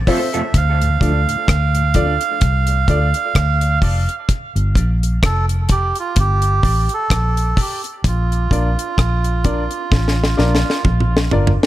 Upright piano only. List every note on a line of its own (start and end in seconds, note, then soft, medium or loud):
0.07 0.25 C4 medium
0.07 0.25 F4 medium
0.07 0.25 A4 medium
0.07 0.25 C5 loud
1.01 1.18 D4 medium
1.01 1.19 F4 medium
1.01 1.19 A4 medium
1.01 1.19 D5 medium
1.95 2.12 D4 medium
1.95 2.12 F4 medium
1.95 2.12 A4 medium
1.95 2.13 D5 loud
2.89 3.06 D4 medium
2.89 3.06 F4 medium
2.89 3.06 A4 medium
2.89 3.07 D5 loud
3.16 3.23 A4 soft
3.16 3.23 D5 soft
3.83 4.00 D4 loud
3.83 4.00 F4 medium
3.83 4.00 A4 medium
3.83 4.01 D5 loud
4.76 4.93 D4 medium
4.76 4.94 G4 medium
4.76 4.94 A#4 medium
4.76 4.94 D5 medium
5.70 5.87 D4 medium
5.70 5.87 G4 medium
5.70 5.88 A#4 medium
5.70 5.88 D5 loud
6.64 6.81 D4 medium
6.64 6.81 G4 medium
6.64 6.81 A#4 medium
6.64 6.82 D5 loud
7.56 7.74 D4 medium
7.56 7.74 G4 medium
7.56 7.74 A#4 medium
7.56 7.75 D5 loud
8.51 8.68 D4 medium
8.51 8.68 F4 medium
8.51 8.69 A#4 medium
8.51 8.69 D5 medium
9.44 9.62 D4 medium
9.44 9.62 F4 medium
9.44 9.62 A#4 medium
9.44 9.62 D5 loud
10.37 10.55 D4 medium
10.37 10.55 F4 medium
10.37 10.56 A#4 medium
10.37 10.56 D5 medium
10.65 10.73 A#4 soft
10.65 10.73 D5 soft
11.31 11.49 D4 medium
11.31 11.49 F4 medium
11.31 11.50 A#4 medium
11.31 11.50 D5 medium